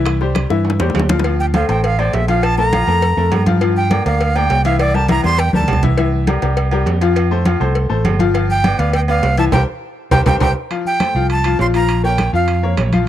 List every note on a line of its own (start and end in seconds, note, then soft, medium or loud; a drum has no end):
0.00 0.45 C2 medium
0.00 0.16 E3 medium
0.00 0.16 E4 medium
0.00 0.16 E5 medium
0.06 high bongo medium
0.06 high conga soft
0.06 high timbale loud
0.21 0.45 G3 medium
0.21 0.46 G4 medium
0.21 0.46 C5 medium
0.21 high bongo soft
0.21 high conga soft
0.35 high bongo medium
0.35 high conga loud
0.35 high timbale medium
0.35 low timbale medium
0.50 0.78 G2 medium
0.50 0.74 E3 medium
0.50 0.75 E4 medium
0.50 0.75 E5 medium
0.50 high bongo medium
0.65 high conga soft
0.65 high timbale medium
0.70 low bongo loud
0.80 0.94 E2 medium
0.80 1.05 G3 medium
0.80 1.05 G4 medium
0.80 1.05 C5 medium
0.80 low bongo medium
0.80 high conga soft
0.80 low timbale medium
0.90 low bongo medium
0.94 1.63 D2 medium
0.94 high conga medium
0.94 low timbale loud
0.99 low bongo medium
1.09 1.22 F3 medium
1.09 1.22 F4 medium
1.09 1.22 F5 medium
1.09 low bongo loud
1.09 high conga medium
1.09 low timbale medium
1.20 low bongo loud
1.24 1.49 F3 medium
1.24 1.49 F4 medium
1.24 1.49 F5 medium
1.24 cowbell loud
1.24 high conga soft
1.24 low agogo medium
1.39 1.46 G5 medium
1.39 high conga soft
1.54 1.66 A3 medium
1.54 1.66 A4 medium
1.54 1.67 C5 medium
1.54 1.68 F5 medium
1.54 cowbell medium
1.54 high conga loud
1.54 low timbale medium
1.54 low agogo loud
1.69 2.10 A1 loud
1.69 1.93 A3 medium
1.69 1.93 A4 medium
1.69 1.93 C5 medium
1.69 1.83 G5 medium
1.69 cowbell medium
1.69 high conga soft
1.69 low agogo medium
1.84 2.01 F5 medium
1.84 cowbell loud
1.84 high conga soft
1.84 low agogo medium
1.99 2.23 A3 medium
1.99 2.23 A4 medium
1.99 2.23 C5 medium
1.99 2.16 D5 medium
1.99 high conga soft
1.99 low agogo loud
2.13 2.82 A#1 medium
2.13 2.28 E5 loud
2.13 cowbell medium
2.13 high conga soft
2.13 low timbale medium
2.28 2.52 F3 medium
2.28 2.53 F4 medium
2.28 2.45 F5 medium
2.28 2.53 F5 medium
2.28 cowbell medium
2.28 high conga soft
2.28 low agogo medium
2.43 2.58 A5 loud
2.43 cowbell loud
2.43 high conga soft
2.43 low agogo loud
2.58 2.70 A3 medium
2.58 2.70 A4 medium
2.58 2.70 A#4 medium
2.58 3.43 A#5 loud
2.58 high conga soft
2.73 2.85 F3 medium
2.73 2.85 F4 medium
2.73 2.85 F5 medium
2.73 cowbell medium
2.73 high conga loud
2.73 low timbale medium
2.73 low agogo loud
2.87 3.15 F2 medium
2.87 3.12 A3 medium
2.87 3.12 A4 medium
2.87 3.12 A#4 medium
2.87 low agogo medium
3.02 cowbell loud
3.02 high conga soft
3.17 3.31 F2 medium
3.17 3.41 A3 medium
3.17 3.42 A4 medium
3.17 3.42 A#4 medium
3.17 high conga soft
3.32 4.00 G2 medium
3.32 cowbell medium
3.32 high conga medium
3.32 low timbale medium
3.32 low agogo loud
3.46 3.58 F3 loud
3.46 3.59 F4 loud
3.46 3.59 F5 loud
3.46 cowbell medium
3.46 high conga medium
3.61 3.86 F3 medium
3.61 3.86 F4 medium
3.61 3.86 F5 medium
3.61 cowbell loud
3.61 high conga soft
3.61 low agogo medium
3.76 4.04 G5 loud
3.76 high conga soft
3.90 4.03 A#3 medium
3.90 4.03 A#4 medium
3.90 4.03 D5 medium
3.90 cowbell medium
3.90 high conga loud
3.90 low timbale medium
3.90 low agogo loud
4.06 4.47 D2 medium
4.06 4.30 A#3 medium
4.06 4.30 A#4 medium
4.06 4.30 D5 medium
4.06 4.38 F5 medium
4.06 cowbell medium
4.06 high conga soft
4.06 low agogo medium
4.20 cowbell loud
4.20 high conga soft
4.20 low agogo medium
4.35 4.60 A#3 medium
4.35 4.60 A#4 medium
4.35 4.60 D5 medium
4.35 4.64 G5 loud
4.35 high conga soft
4.35 low agogo loud
4.50 5.19 C2 medium
4.50 cowbell medium
4.50 high conga soft
4.50 low timbale medium
4.65 4.89 E3 medium
4.65 4.89 E4 medium
4.65 4.90 E5 loud
4.65 4.79 F5 medium
4.65 cowbell medium
4.65 high conga soft
4.65 low agogo medium
4.79 4.96 D5 loud
4.79 cowbell loud
4.79 high conga soft
4.79 low agogo loud
4.94 5.06 G3 medium
4.94 5.07 G4 medium
4.94 5.07 A#4 medium
4.94 5.09 A5 loud
4.94 high conga soft
5.08 5.21 E3 medium
5.08 5.21 E4 medium
5.08 5.21 E5 medium
5.08 5.23 A#5 loud
5.08 cowbell medium
5.08 high conga loud
5.08 low timbale medium
5.08 low agogo loud
5.23 5.52 E2 medium
5.23 5.48 G3 medium
5.23 5.48 G4 medium
5.23 5.48 A#4 medium
5.23 5.41 C6 loud
5.23 low agogo medium
5.38 5.54 G5 loud
5.38 cowbell loud
5.38 high conga soft
5.53 5.67 D2 medium
5.53 5.78 G3 medium
5.53 5.78 G4 medium
5.53 5.78 A#4 medium
5.53 5.82 A5 medium
5.53 high conga loud
5.63 high conga medium
5.68 6.37 C2 medium
5.68 cowbell medium
5.68 low timbale medium
5.68 low agogo loud
5.73 low conga loud
5.83 5.95 E3 medium
5.83 5.95 E4 medium
5.83 5.95 E5 medium
5.83 cowbell medium
5.83 low conga loud
5.98 6.22 E3 medium
5.98 6.22 E4 medium
5.98 6.22 E5 medium
5.98 cowbell loud
5.98 high conga soft
5.98 low agogo medium
6.13 high conga soft
6.27 6.39 G3 medium
6.27 6.40 G4 medium
6.27 6.40 A#4 medium
6.27 cowbell medium
6.27 high conga loud
6.27 low timbale medium
6.27 low agogo loud
6.42 6.83 C2 medium
6.42 6.66 G3 medium
6.42 6.67 G4 medium
6.42 6.67 A#4 medium
6.42 cowbell medium
6.42 high conga soft
6.42 low agogo medium
6.57 cowbell loud
6.57 high conga soft
6.57 low agogo medium
6.71 6.96 G3 medium
6.71 6.96 G4 medium
6.71 6.96 A#4 medium
6.71 high conga soft
6.71 low agogo loud
6.86 7.55 F2 medium
6.86 cowbell medium
6.86 high conga soft
6.86 low timbale medium
7.01 7.26 F3 medium
7.01 7.26 F4 medium
7.01 7.26 F5 medium
7.01 cowbell medium
7.01 high conga soft
7.01 low agogo medium
7.16 cowbell loud
7.16 high conga soft
7.16 low agogo loud
7.31 7.43 A3 medium
7.31 7.43 A4 medium
7.31 7.43 C5 medium
7.31 high conga soft
7.45 7.58 F3 medium
7.45 7.58 F4 medium
7.45 7.58 F5 medium
7.45 cowbell medium
7.45 high conga loud
7.45 low timbale medium
7.45 low agogo loud
7.60 7.88 C2 loud
7.60 7.84 A3 medium
7.60 7.85 A4 medium
7.60 7.85 C5 medium
7.60 low agogo medium
7.75 cowbell loud
7.75 high conga soft
7.89 8.04 A1 medium
7.89 8.14 A3 medium
7.89 8.14 A4 medium
7.89 8.14 C5 medium
7.89 high conga soft
8.05 8.73 G1 medium
8.05 cowbell medium
8.05 high conga medium
8.05 low timbale medium
8.05 low agogo loud
8.19 8.31 F3 loud
8.19 8.32 F4 medium
8.19 8.32 F5 loud
8.19 cowbell medium
8.19 high conga medium
8.34 8.58 F3 medium
8.34 8.59 F4 medium
8.34 8.59 F5 medium
8.34 cowbell loud
8.34 high conga soft
8.34 low agogo medium
8.50 8.81 G5 loud
8.50 high conga soft
8.64 8.76 B3 medium
8.64 8.76 B4 medium
8.64 8.76 D5 medium
8.64 cowbell medium
8.64 high conga loud
8.64 low timbale medium
8.64 low agogo loud
8.79 9.20 D2 loud
8.79 9.03 B3 medium
8.79 9.03 B4 medium
8.79 9.03 D5 medium
8.79 8.94 F5 medium
8.79 cowbell medium
8.79 high conga soft
8.79 low agogo medium
8.93 9.01 G5 loud
8.93 cowbell loud
8.93 high conga soft
8.93 low agogo medium
9.08 9.33 B3 medium
9.08 9.33 B4 medium
9.08 9.33 D5 medium
9.08 9.36 F5 loud
9.08 high conga soft
9.08 low agogo loud
9.23 9.50 C2 loud
9.23 cowbell medium
9.23 high conga soft
9.23 low timbale medium
9.37 9.50 E3 medium
9.37 9.50 E4 medium
9.37 9.50 E5 medium
9.37 9.45 A5 loud
9.37 cowbell medium
9.37 high conga soft
9.37 low agogo medium
9.52 9.64 C2 loud
9.52 9.62 G4 loud
9.52 9.62 A#4 loud
9.52 9.62 C5 loud
9.52 9.62 G5 loud
9.52 cowbell loud
9.52 low conga loud
9.52 high timbale loud
10.11 10.23 C2 loud
10.11 10.21 G4 loud
10.11 10.21 A#4 loud
10.11 10.21 C5 loud
10.11 10.21 G5 loud
10.11 cowbell loud
10.11 low conga loud
10.11 high timbale loud
10.26 10.37 C2 loud
10.26 10.36 G4 loud
10.26 10.36 A#4 loud
10.26 10.36 C5 loud
10.26 10.36 G5 loud
10.26 cowbell loud
10.26 low conga loud
10.26 high timbale loud
10.40 10.52 C2 loud
10.40 10.50 G4 loud
10.40 10.50 A#4 loud
10.40 10.50 C5 loud
10.40 10.51 G5 loud
10.40 cowbell loud
10.40 low conga loud
10.40 high timbale loud
10.71 10.95 F3 medium
10.71 10.95 F4 medium
10.71 10.95 F5 medium
10.71 high conga soft
10.71 high timbale medium
10.85 11.27 G5 loud
10.85 high conga soft
11.00 11.12 A3 medium
11.00 11.12 A4 medium
11.00 11.13 C5 medium
11.00 high conga loud
11.00 high timbale medium
11.00 low timbale medium
11.15 11.56 C2 medium
11.15 11.39 F3 medium
11.15 11.40 F4 medium
11.15 11.40 F5 medium
11.15 high conga soft
11.30 11.58 A5 loud
11.30 high conga soft
11.30 high timbale medium
11.44 11.57 F3 medium
11.44 11.57 F4 medium
11.44 11.57 F5 medium
11.44 high conga soft
11.44 high timbale medium
11.59 12.28 A#1 medium
11.59 11.71 F3 medium
11.59 11.72 F4 medium
11.59 11.72 F5 medium
11.59 11.67 C6 loud
11.59 high conga soft
11.59 low timbale medium
11.74 11.98 F3 medium
11.74 11.99 F4 medium
11.74 11.99 F5 medium
11.74 12.02 A#5 loud
11.74 high conga soft
11.74 high timbale medium
11.89 high conga soft
11.89 high timbale medium
12.04 12.28 A#3 medium
12.04 12.28 A#4 medium
12.04 12.28 C#5 medium
12.04 12.32 G5 loud
12.04 high conga soft
12.18 high conga loud
12.18 high timbale medium
12.18 low timbale medium
12.33 12.74 F2 medium
12.33 12.57 F3 medium
12.33 12.58 F4 medium
12.33 12.58 F5 medium
12.33 12.76 F5 medium
12.48 high conga soft
12.48 high timbale medium
12.63 12.87 A#3 medium
12.63 12.87 A#4 medium
12.63 12.87 C#5 medium
12.63 high conga soft
12.77 13.08 A#1 medium
12.77 high conga medium
12.77 high timbale medium
12.77 low timbale medium
12.93 13.05 F3 medium
12.93 13.05 F4 medium
12.93 13.05 F5 medium
12.93 high conga medium
12.93 high timbale medium